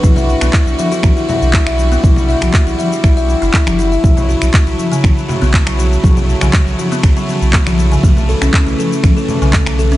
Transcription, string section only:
\new Staff \with { instrumentName = "String section" } { \clef bass \time 4/4 \key e \dorian \tempo 4 = 120 << { <d e' fis'>1~ | <d e' fis'>1 | <cis a>1~ | <cis a>1~ |
<cis a>1 | } \\ { g1~ | g1 | fis1~ | fis1 |
e1 | } >> }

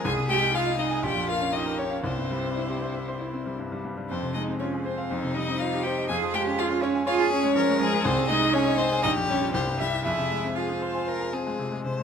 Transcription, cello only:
\new Staff \with { instrumentName = "Cello" } { \time 4/4 \key f \minor \tempo 4 = 120 aes'8 g'8 f'8 ees'8 g'8 f'8 ees'8 des'8 | c'2. r4 | c'8 ees'8 des'8 c'4 ees'8 f'8 g'8 | aes'8 g'8 f'8 des'8 f'8 des'4 aes8 |
c'8 ees'8 des'8 c'8 ees'8 des'8 c'8 e'8 | e'4 f'2 r4 | }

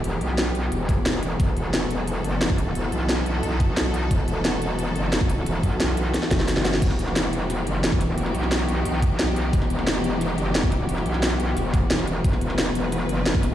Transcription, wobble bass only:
\new Staff \with { instrumentName = "Wobble bass" } { \clef bass \time 4/4 \key e \minor \tempo 4 = 177 e,,8 b,,4. e,,4. e,,8 | e,,4 e,,4. fis,,8 e,,4 | e,,8 b,,4. b,,2 | e,,4 e,,4. fis,,8 e,,4 |
e,,8 b,,4. r8 fis,,4. | e,,4 e,,4. fis,,8 e,,4 | e,,8 b,,4. b,,2 | e,,4 e,,4. fis,,8 e,,4 |
e,,8 b,,4. e,,4. e,,8 | e,,4 e,,4. fis,,8 e,,4 | }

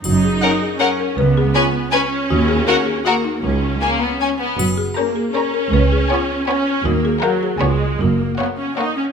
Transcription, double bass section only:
\new Staff \with { instrumentName = "Double bass section" } { \clef bass \time 3/4 \key fis \major \tempo 4 = 159 fis,,4 r2 | cis,4 r2 | dis,4 r2 | cis,4 r2 |
fis,,4 r2 | cis,4 r2 | dis,4 r4 cis,4 | fis,,4 r2 | }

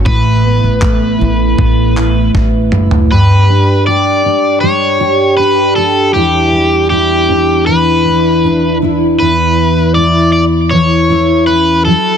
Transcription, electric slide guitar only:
\new Staff \with { instrumentName = "Electric slide guitar" } { \time 4/4 \key g \lydian \tempo 4 = 79 b'2. r4 | b'4 d''4 cis''4 b'8 a'8 | g'4 g'4 b'4. r8 | b'4 d''8 d''8 cis''4 b'8 a'8 | }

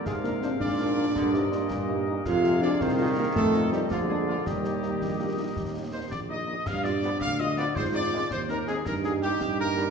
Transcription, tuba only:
\new Staff \with { instrumentName = "Tuba" } { \clef bass \time 6/8 \key ees \major \tempo 4. = 109 aes,4. aes,4. | g,4. g,4. | f,4. c,4. | f,4. bes,,4. |
ees,4. bes,,4. | ees,4. bes,,4. | g,4. d,4. | aes,4. ees,4. |
g,4. g,4. | }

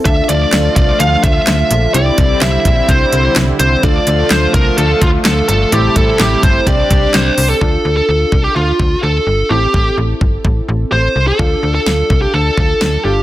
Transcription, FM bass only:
\new Staff \with { instrumentName = "FM bass" } { \clef bass \time 4/4 \key d \minor \tempo 4 = 127 d,8 d,8 d,8 c,8 d,8 d,8 d,8 bes,,8 | c,8 c,8 c,8 bes,,8 c,8 c,8 c,8 c,8 | d,8 d,8 d,8 c,8 d,8 d,8 d,8 g,,8 | a,,8 a,,8 a,,8 g,,8 c,8 c,8 c,8 c,8 |
d,8 d,8 d,8 c,8 d,8 d,8 d,8 g,,8 | a,,8 a,,8 a,,8 g,,8 a,,8 a,,8 a,,8 c,8 | d,8 d,8 d,8 c,8 d,8 d,8 d,8 g,,8 | }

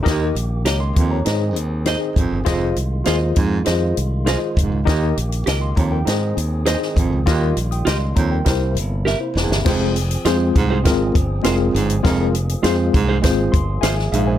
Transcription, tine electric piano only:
\new Staff \with { instrumentName = "Tine electric piano" } { \time 4/4 \key f \minor \tempo 4 = 100 << { r4 <des'' bes''>16 <ees'' c'''>8 <des'' bes''>8 r4. r16 | r1 | r4 r16 <ees'' c'''>16 <des'' bes''>16 <bes' g''>8 r4. r16 | r8. <g'' ees'''>16 <ees'' c'''>8 <des'' bes''>16 <bes' g''>8 r8. bes'16 <e' c''>8 <g' e''>16~ |
<g' e''>16 r2. r8. | r2 r8 c'''8 <aes' e'' aes''>8 <aes' e'' f''>16 <c'' aes''>16 | } \\ { <ees' g' bes' ees''>8 r4. <ees' aes' c'' ees''>8 r8 <ees' aes' c'' ees''>8 r8 | <f' aes' c'' ees''>8 r8 <f' aes' c'' ees''>8 r8 <f' aes' c'' ees''>8 r8 <f' aes' c'' ees''>8 r8 | <ees' g' bes' ees''>8 r4. <ees' aes' c'' ees''>8 r8 <ees' aes' c'' ees''>8 r8 | <f' g' bes' ees''>8 r4. <e' g' bes' c''>8 r4. |
<aes c' f' aes' c''>8 r8 <aes c' f' aes' c''>8 r8 <aes c' f' aes' bes'>8 r8 <aes c' f' aes' bes'>8 r8 | <aes c' f' aes' bes'>8 r8 <aes c' f' aes' c''>8 r8 <aes c' f' aes' c''>8 r4. | } >> }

